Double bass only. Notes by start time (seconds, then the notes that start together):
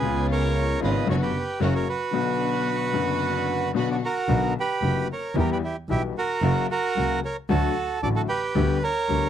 0.02 C#2
0.81 G#1
1.07 F#1
1.61 F#1
4.29 B1
4.82 F#1
5.35 E2
5.89 B1
6.42 F#1
6.96 C#2
7.49 D2
8.03 A1
8.56 D2
9.09 D2